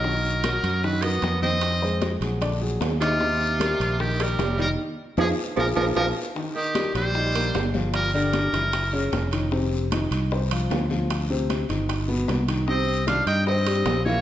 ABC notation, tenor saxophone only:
X:1
M:4/4
L:1/8
Q:1/4=152
K:Eb
V:1 name="Tenor saxophone" clef=bass
_G,4 ^F, =B,2 C- | C3 z4 C,- | C,4 E, G,2 G, | z2 F, z F, F, F, z |
z E,2 G,4 z | G, G,3 z4 | z8 | z8 |
C2 D E C3 B, |]